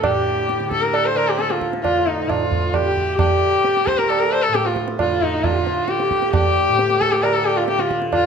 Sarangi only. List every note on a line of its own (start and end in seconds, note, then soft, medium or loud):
0.04 0.68 G4 medium
0.71 0.84 A4 medium
0.82 0.96 A#4 medium
0.94 1.07 A4 medium
1.06 1.18 C5 medium
1.17 1.30 A#4 loud
1.29 1.41 G4 medium
1.39 1.53 A4 medium
1.52 1.63 F4 medium
1.84 2.08 F4 loud
2.06 2.31 D#4 medium
2.29 2.76 F4 medium
2.74 3.19 G4 loud
3.19 3.88 G4 loud
3.87 3.99 C5 loud
3.98 4.11 A#4 medium
4.09 4.21 A4 medium
4.20 4.33 A#4 medium
4.32 4.44 C5 loud
4.43 4.56 A4 loud
4.55 4.68 G4 loud
4.66 4.77 F4 medium
5.00 5.24 F4 medium
5.23 5.46 D#4 medium
5.45 5.91 F4 medium
5.89 6.33 G4 medium
6.34 7.02 G4 loud
7.00 7.13 A4 loud
7.12 7.24 G4 loud
7.23 7.36 A#4 loud
7.34 7.47 A4 loud
7.46 7.59 G4 loud
7.57 7.68 F4 medium
7.68 7.82 G4 loud
7.80 7.91 F4 medium
8.13 8.26 F4 loud